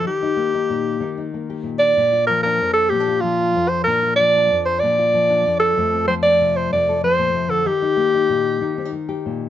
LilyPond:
<<
  \new Staff \with { instrumentName = "Alto saxophone" } { \time 12/8 \key bes \major \tempo 4. = 126 g'1 r4. d''8~ | d''4 bes'8 bes'4 a'8 g'4 f'4. c''8 | bes'4 d''4. c''8 d''2~ d''8 a'8~ | a'4 c''8 d''4 c''8 d''4 c''4. a'8 |
g'1 r2 | }
  \new Staff \with { instrumentName = "Nylon-string guitar" } { \time 12/8 \key bes \major << { ees'8 ees'4 ees'4. ees'8 ees'4 g'4. | d'8 f'4 d'4. c'16 d'16 f'4 d'4. | d'8 f'4 d'4. d'8 f'4 d'4. | <f a c'>8 c'4 c'4. c'8 a'2~ a'8 |
ees'8 ees'4 ees'4. ees'8 c'16 ees'8. g'4. | } \\ { ees4 bes4 bes,4 ees4 bes4 bes,4 | bes,4 f4 f,4 bes,4 f4 f,4 | bes,4 f4 f,4 bes,4 f4 f,4 | f,4 f4 c4 f,4 f8 bes,8 c8 d8 |
ees4 bes4 bes,4 ees2 bes,4 | } >> }
>>